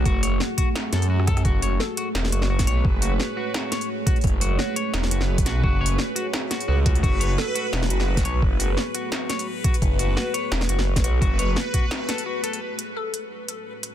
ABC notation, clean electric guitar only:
X:1
M:4/4
L:1/8
Q:"Swing 16ths" 1/4=172
K:F#m
V:1 name="Clean electric guitar"
F c z F z A F A | F c z F z F F c | z F z F F c z F | z F F c z F z F |
F c z F z F F F | F c z F z F F c | z F z F F c z F | z F F c z F z F |
F c z F z A F A | z8 |]